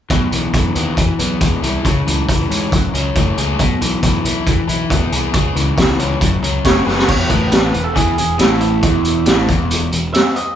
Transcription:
0.10 B1 B2, kick, closed hi-hat
0.32 B1 E3, closed hi-hat
0.53 B1 E3, kick, closed hi-hat
0.75 D#2 B3, closed hi-hat
0.96 E1 E3, kick, closed hi-hat
1.19 B1 B3, closed hi-hat
1.40 E1 G#3, kick, closed hi-hat
1.62 C2 E4, closed hi-hat
1.85 C#2 C#3, kick, closed hi-hat
2.07 C#2 E3, closed hi-hat
2.29 C#2 E3, kick, closed hi-hat
2.50 G#2 C#4, closed hi-hat
2.72 F#1 F#2, kick, closed hi-hat
2.94 C#2 C#4, closed hi-hat
3.15 F#1 A3, kick, closed hi-hat
3.38 C#2 G#4, closed hi-hat
3.59 B1 B2, kick, closed hi-hat
3.81 B1 E3, closed hi-hat
4.03 B1 E3, kick, closed hi-hat
4.25 B1 E4, closed hi-hat
4.46 E1 E3, kick, closed hi-hat
4.68 B1 E4, closed hi-hat
4.90 E1 B3, kick, closed hi-hat
5.12 C2 G#4, closed hi-hat
5.34 C#2 C#3, kick, closed hi-hat
5.55 C#2 E3, closed hi-hat
5.77 C#2 E3, kick, snare, closed hi-hat
5.99 C#2 C#4, closed hi-hat
6.21 F#1 F#2, kick, closed hi-hat
6.42 C#2 C#4, closed hi-hat
6.65 F#1 A3 C#5, kick, snare, closed hi-hat
6.86 F#1 G#4 B4, snare
6.99 snare
7.08 E1 E2 C#5, kick, crash
7.29 A1 A2 B4, kick, closed hi-hat
7.52 B4, snare, closed hi-hat
7.74 E1 E2, closed hi-hat
7.84 A4
7.95 E2 E3 G#4, kick, closed hi-hat
8.17 E1 E2 G#4, closed hi-hat
8.39 A1 A2 E4, snare, closed hi-hat
8.61 E4, closed hi-hat
8.83 E1 E2, kick, closed hi-hat
9.05 closed hi-hat
9.26 A1 A2, snare, closed hi-hat
9.48 E1 E2, kick, closed hi-hat
9.71 closed hi-hat
9.92 E1 E2, closed hi-hat
10.14 E5, snare, closed hi-hat
10.36 D#5, closed hi-hat

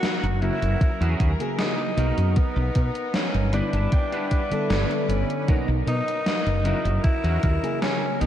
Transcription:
Already playing: B3 D#4 F#4 A#4
0.03 snare, closed hi-hat
0.23 F#1, closed hi-hat
0.41 C#3 E3 F#3 A#3 C#4 E4 F#4 A#4, closed hi-hat
0.62 F#1, closed hi-hat
0.81 muted fretless electric bass stroke, kick, closed hi-hat
1.00 E2 C#4 E4 F#4 G#4, closed hi-hat
1.20 D#2, kick, closed hi-hat
1.39 C#3 F#3 A#3 G#4, closed hi-hat
1.59 D#4, muted clean electric guitar stroke, snare, closed hi-hat
1.78 muted clean electric guitar stroke
1.97 B1 B2 F#3 A#3 B3 D#4 F#4 A#4, closed hi-hat
2.17 F#2, closed hi-hat
2.36 B3, muted fretless electric bass stroke, kick, closed hi-hat
2.56 B1
2.75 B2, muted clean electric guitar stroke, kick, closed hi-hat
2.95 closed hi-hat
3.14 C#4, muted clean electric guitar stroke, snare, closed hi-hat
3.34 G1, closed hi-hat
3.52 D3 G3 B3 D4 E4 G4 B4 B5, closed hi-hat
3.73 G1 A5, closed hi-hat
3.92 G5, kick, closed hi-hat
4.12 D4 E4 G4 B4 F#5, closed hi-hat
4.31 kick, closed hi-hat
4.50 D3 G3 B3 A4 E5, muted fretless electric bass stroke, closed hi-hat
4.70 G1 C#5, muted clean electric guitar stroke, snare, closed hi-hat
4.90 muted clean electric guitar stroke, closed hi-hat
5.08 G1 C#4 D5, muted clean electric guitar stroke, closed hi-hat
5.30 closed hi-hat
5.48 B2 F#3 A#3 B3 D#4 F#4 A#4, muted fretless electric bass stroke, kick, closed hi-hat
5.68 B1
5.86 B2 D#4, muted clean electric guitar stroke, closed hi-hat
6.08 closed hi-hat
6.26 snare, closed hi-hat
6.46 F#1, closed hi-hat
6.64 C#3 E3 F#3 A#3 C#4 E4 F#4 A#4, closed hi-hat
6.85 F#1, closed hi-hat
7.04 E4, kick, closed hi-hat
7.23 E2 C#4 E4 F#4 A#4, closed hi-hat
7.43 D#2, kick, closed hi-hat
7.62 C#3 F#3 A#3 G#4, closed hi-hat
7.81 C#4, muted clean electric guitar stroke, snare, closed hi-hat
8.02 muted clean electric guitar stroke
8.20 B1 B2 F#3 A#3 B3 D#4 F#4 A#4, closed hi-hat

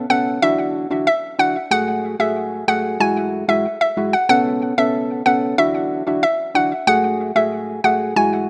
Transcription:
0.10 B3 C#4 A4 F#5
0.42 D4 E4 F#4 E5
0.90 D4 E4 F#4
1.07 E5
1.39 D4 E4 F#4 F#5
1.71 A3 F#4 G#4 F#5
2.19 A3 F#4 G#4 E5
2.68 A3 F#4 G#4 F#5
3.00 G#3 E4 F#4 G#5
3.48 G#3 E4 F#4 E5
3.81 E5
3.97 G#3 E4 F#4
4.13 F#5
4.29 B3 C#4 A4 F#5
4.78 B3 C#4 A4 E5
5.26 B3 C#4 A4 F#5
5.58 D4 E4 F#4 E5
6.07 D4 E4 F#4
6.23 E5
6.55 D4 E4 F#4 F#5
6.87 A3 F#4 G#4 F#5
7.35 A3 F#4 G#4 E5
7.84 A3 F#4 G#4 F#5
8.16 G#3 E4 F#4 G#5

